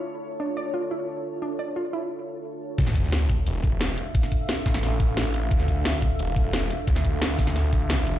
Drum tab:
CC |----------------|----------------|x---------------|----------------|
HH |----------------|----------------|x-x-x-x-x-x-x-x-|x-x-x-o-x-x-x-x-|
SD |----------------|----------------|-o--o-------o---|-o--o-ooo---o---|
BD |----------------|----------------|o-o---o---o-----|o-o---o---o-----|

CC |----------------|----------------|
HH |x-x-x-x-x-x-x-x-|x-x-x-o-x-x-x-x-|
SD |-o--o-------o---|-o--o-ooo---o---|
BD |o-o---o---o-----|o-o---o---o-----|